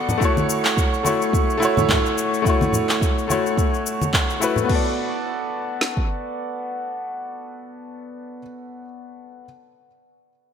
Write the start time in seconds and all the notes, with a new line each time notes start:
Already playing: B3 F#4 A4 D5 C#6
0.09 low conga, cabasa
0.18 A3 E4, kick
0.22 F#4 C#5, cabasa
0.37 high conga, cabasa
0.50 cabasa
0.65 clap, cabasa
0.77 kick, cabasa
0.94 cabasa
1.03 A3 E4 F#4 C#5, high conga, cabasa
1.22 cabasa
1.33 kick, cabasa
1.50 cabasa
1.58 A3 E4
1.62 F#4 C#5, cabasa
1.77 high conga, low conga, cabasa
1.89 kick, clap, low conga, cabasa
2.06 cabasa
2.18 cabasa
2.34 cabasa
2.42 A3 E4, kick
2.46 F#4 C#5, cabasa
2.61 high conga, cabasa
2.73 low conga, cabasa
2.89 clap, cabasa
3.01 kick, cabasa
3.18 cabasa
3.28 A3 E4 F#4 C#5, high conga, cabasa
3.46 cabasa
3.57 kick, cabasa
3.74 cabasa
3.86 cabasa
4.02 high conga, cabasa
4.13 kick, clap, cabasa
4.30 cabasa
4.40 A3 E4 F#4 B4, cabasa
4.56 low conga, cabasa
4.64 B3 F#4
4.69 A4, kick, crash
4.75 D5
5.81 snare
5.97 kick